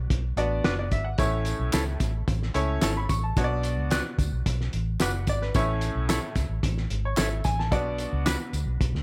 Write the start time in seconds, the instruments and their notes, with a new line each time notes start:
0.10 fingered electric bass B1, kick, closed hi-hat
0.36 fingered electric bass A1, upright piano B3 D4 F#4 D5, closed hi-hat
0.64 fingered electric bass F#1, clean electric guitar F#4 B4 D5, snare, closed hi-hat
0.79 upright piano D5
0.91 fingered electric bass G#1, upright piano E5, kick, closed hi-hat
1.04 upright piano F#5
1.18 fingered electric bass A1, upright piano A2 A3 C#4 E4 C#5, kick, closed hi-hat, tambourine
1.45 closed hi-hat, tambourine
1.59 fingered electric bass B1
1.73 fingered electric bass C#2, clean electric guitar E4 A4 C#5, snare, clap, closed hi-hat, tambourine
2.00 fingered electric bass A1, kick, snare, closed hi-hat, tambourine
2.28 fingered electric bass A1, kick, closed hi-hat, tambourine
2.43 snare
2.54 fingered electric bass C#2, upright piano A3 C#4 E4 C#5, closed hi-hat, tambourine
2.82 fingered electric bass G#1, clean electric guitar E4 A4 C#5, upright piano A5, snare, clap, closed hi-hat, tambourine
2.97 upright piano B5
3.09 fingered electric bass A1, upright piano C#6, kick, closed hi-hat, tambourine
3.24 upright piano A5
3.36 fingered electric bass B1, upright piano B2 B3 D4 F#4 C#5, kick, closed hi-hat, tambourine
3.44 upright piano D5
3.63 closed hi-hat, tambourine
3.78 fingered electric bass C#2
3.91 clean electric guitar F#4 B4 D5, snare, clap, closed hi-hat, tambourine
4.18 fingered electric bass D2, kick, closed hi-hat, tambourine
4.32 fingered electric bass B1
4.46 fingered electric bass B1, kick, closed hi-hat, tambourine
4.61 snare
4.73 fingered electric bass A1, closed hi-hat
5.00 fingered electric bass F#1, clean electric guitar F#4 B4 D5, upright piano F#5, snare, clap, closed hi-hat, tambourine
5.27 fingered electric bass G#1, upright piano D5, kick, closed hi-hat, tambourine
5.42 upright piano B4, snare
5.54 fingered electric bass A1, upright piano A2 A3 C#4 E4 C#5, kick, closed hi-hat, tambourine
5.81 closed hi-hat, tambourine
5.95 fingered electric bass B1
6.09 clean electric guitar E4 A4 C#5, snare, clap, closed hi-hat, tambourine
6.35 fingered electric bass C#2, kick, snare, closed hi-hat, tambourine
6.49 fingered electric bass A1
6.63 fingered electric bass A1, kick, closed hi-hat, tambourine
6.78 snare
6.90 fingered electric bass G#1, closed hi-hat
7.05 upright piano C#5
7.17 fingered electric bass G#1, clean electric guitar E4 A4 C#5, upright piano E5, snare, clap, closed hi-hat, tambourine
7.44 fingered electric bass A1, upright piano G#5, kick, closed hi-hat, tambourine
7.59 upright piano A5, snare
7.71 fingered electric bass B1, upright piano B2 B3 D4 F#4 D5, kick, closed hi-hat, tambourine
7.98 closed hi-hat, tambourine
8.13 fingered electric bass C#2
8.26 clean electric guitar D4 F#4 B4, snare, clap, closed hi-hat, tambourine
8.53 fingered electric bass D2, closed hi-hat, tambourine
8.66 fingered electric bass B1
8.81 fingered electric bass B1, kick, closed hi-hat, tambourine
8.93 fingered electric bass D2, snare